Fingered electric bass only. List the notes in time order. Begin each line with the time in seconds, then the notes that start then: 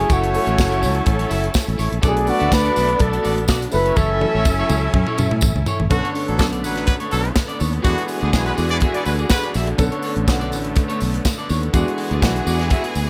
0.10 F#1
0.47 A1
0.59 F#1
0.83 C#2
1.07 A1
1.31 F#1
1.68 A1
1.79 A1
1.92 A#1
2.03 B1
2.41 D2
2.52 D2
2.77 B1
3.00 B1
3.25 A1
3.49 B1
3.74 F#1
3.97 F#1
4.35 A1
4.46 F#1
4.70 C#2
4.95 F#2
5.19 F#2
5.32 A2
5.43 A1
5.55 C#2
5.80 A1
5.91 B1
6.29 A1
6.40 B1
6.64 A1
7.13 B1
7.61 D#2
7.85 E2
8.23 D2
8.34 B1
8.58 E2
9.06 D2
9.55 A#1
9.79 B1
10.16 A1
10.28 B1
10.53 A1
11.02 B1
11.50 D#2
11.74 E2
12.11 D2
12.23 B1
12.47 E2
12.96 D2